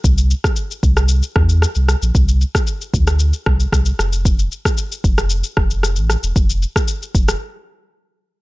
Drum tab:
SH |xxxxxxxxxx-xxxxx|xxxxxxxxxx-xxxxx|xxxxxxxxxx-xxxxx|xxxxxxxx--------|
SD |---r---r--r-r-r-|---r---r--r-r-r-|---r---r--r-r-r-|---r---r--------|
BD |o--o--o---o-----|o--o--o---o-o---|o--o--o---o-----|o--o--o---------|